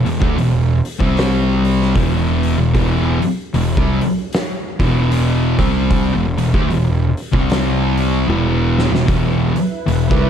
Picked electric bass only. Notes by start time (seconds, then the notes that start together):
0.05 E1
0.21 D2
0.35 E1
1.00 C2
1.95 E1
2.58 E1
2.75 E1
3.21 muted picked electric bass stroke
3.54 E1
3.78 C2
4.00 muted picked electric bass stroke
4.80 E1
5.58 C2
6.16 E1
6.38 E1
6.54 D2
6.69 E1
7.33 C2
8.29 E1
8.90 E1
9.09 E1
9.56 muted picked electric bass stroke
9.87 E1
10.11 C2